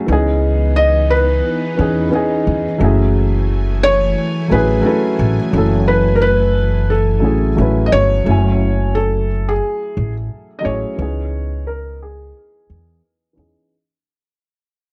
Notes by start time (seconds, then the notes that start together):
0.06 C#2 E3 B3 C#4 D#4
0.11 D#4 G#4
0.76 D#5
1.10 B4
1.75 E3 B3 C#4
1.79 E2 D#4 G#4
2.09 E3 B3 C#4
2.14 D#4 G#4
2.47 E2
2.78 F#1 E3 F#3 A3 C#4 G#5
2.83 E4 G#4
3.83 C#5
4.48 A1 F#3 A3 C#4 B4
4.53 E4 G#4
4.81 F#3 A3 C#4
4.86 E4 A4 B4
5.19 A1
5.51 F#1 F#3 A3 C#4
5.56 E4 A4
5.88 B4
6.15 A#4
6.22 B4
6.90 A4
7.18 F#3 A3 C#4
7.23 A1 E4 G#4
7.55 A1 F#3 A3 C#4
7.60 E4 B4
7.86 D#5
7.92 G1 C#5
8.24 F#1 F#3 A3 C#4
8.29 E4 G#5
8.95 A4
9.49 G#4
9.97 A1
10.59 F#3 A3 D#5
10.64 A1 C#4 E4 G#4 C#5
10.96 C#2 E3 B3 C#4
11.00 D#4 G#4
11.67 A#4
12.02 G#4
12.70 E2
13.33 E3 B3 C#4
13.37 E2 D#4 G#4